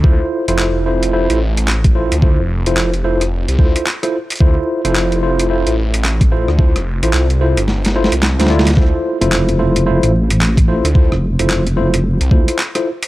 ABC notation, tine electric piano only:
X:1
M:4/4
L:1/16
Q:"Swing 16ths" 1/4=110
K:Dm
V:1 name="Tine electric piano"
[EFAc]3 [EFAc]3 [EFAc]2 [EFAc]2 z4 [EFAc] z | [EFAc] z2 [EFAc]2 z [EFAc] z3 [EFAc]2 z [EFAc] z2 | [EFAc]3 [EFAc]3 [EFAc]2 [EFAc]2 z4 [EFAc] z | [EFAc] z2 [EFAc]2 z [EFAc] z3 [EFAc] z2 [EFAc] [EFAd] z |
[EFAc]3 [EFAc]3 [EFAc]2 [EFAc]2 z4 [EFAc] z | [EFAc] z2 [EFAc]2 z [EFAc] z3 [EFAc]2 z [EFAc] z2 |]